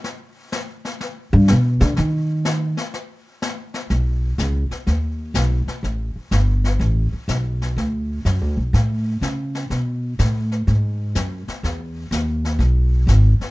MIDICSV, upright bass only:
0, 0, Header, 1, 3, 480
1, 0, Start_track
1, 0, Tempo, 483092
1, 45, Time_signature, 4, 2, 24, 8
1, 13423, End_track
2, 0, Start_track
2, 0, Title_t, "Upright bass"
2, 0, Program_c, 0, 32
2, 1321, Note_on_c, 0, 43, 96
2, 1475, Note_off_c, 0, 43, 0
2, 1496, Note_on_c, 0, 47, 69
2, 1791, Note_off_c, 0, 47, 0
2, 1797, Note_on_c, 0, 50, 97
2, 1953, Note_off_c, 0, 50, 0
2, 1967, Note_on_c, 0, 51, 81
2, 2722, Note_off_c, 0, 51, 0
2, 3877, Note_on_c, 0, 35, 70
2, 4342, Note_off_c, 0, 35, 0
2, 4354, Note_on_c, 0, 37, 85
2, 4653, Note_off_c, 0, 37, 0
2, 4836, Note_on_c, 0, 39, 75
2, 5302, Note_off_c, 0, 39, 0
2, 5308, Note_on_c, 0, 35, 74
2, 5610, Note_off_c, 0, 35, 0
2, 5791, Note_on_c, 0, 33, 67
2, 6092, Note_off_c, 0, 33, 0
2, 6272, Note_on_c, 0, 31, 79
2, 6741, Note_off_c, 0, 31, 0
2, 6751, Note_on_c, 0, 33, 77
2, 7052, Note_off_c, 0, 33, 0
2, 7232, Note_on_c, 0, 35, 77
2, 7701, Note_off_c, 0, 35, 0
2, 7715, Note_on_c, 0, 38, 75
2, 8183, Note_off_c, 0, 38, 0
2, 8197, Note_on_c, 0, 42, 83
2, 8358, Note_off_c, 0, 42, 0
2, 8358, Note_on_c, 0, 38, 57
2, 8507, Note_off_c, 0, 38, 0
2, 8513, Note_on_c, 0, 35, 60
2, 8665, Note_off_c, 0, 35, 0
2, 8677, Note_on_c, 0, 45, 78
2, 9144, Note_off_c, 0, 45, 0
2, 9154, Note_on_c, 0, 49, 75
2, 9623, Note_off_c, 0, 49, 0
2, 9640, Note_on_c, 0, 47, 67
2, 10106, Note_off_c, 0, 47, 0
2, 10125, Note_on_c, 0, 45, 86
2, 10589, Note_off_c, 0, 45, 0
2, 10603, Note_on_c, 0, 44, 73
2, 11068, Note_off_c, 0, 44, 0
2, 11080, Note_on_c, 0, 42, 76
2, 11379, Note_off_c, 0, 42, 0
2, 11558, Note_on_c, 0, 40, 74
2, 12026, Note_off_c, 0, 40, 0
2, 12033, Note_on_c, 0, 39, 80
2, 12503, Note_off_c, 0, 39, 0
2, 12508, Note_on_c, 0, 35, 83
2, 12979, Note_off_c, 0, 35, 0
2, 12985, Note_on_c, 0, 32, 81
2, 13291, Note_off_c, 0, 32, 0
2, 13423, End_track
3, 0, Start_track
3, 0, Title_t, "Muted upright bass strokes"
3, 4675, Note_on_c, 9, 29, 37
3, 4775, Note_off_c, 9, 29, 0
3, 5634, Note_on_c, 9, 29, 36
3, 5733, Note_off_c, 9, 29, 0
3, 6118, Note_on_c, 9, 29, 36
3, 6217, Note_off_c, 9, 29, 0
3, 7079, Note_on_c, 9, 29, 39
3, 7178, Note_off_c, 9, 29, 0
3, 11402, Note_on_c, 9, 29, 35
3, 11502, Note_off_c, 9, 29, 0
3, 13315, Note_on_c, 9, 29, 35
3, 13414, Note_off_c, 9, 29, 0
3, 13423, End_track
0, 0, End_of_file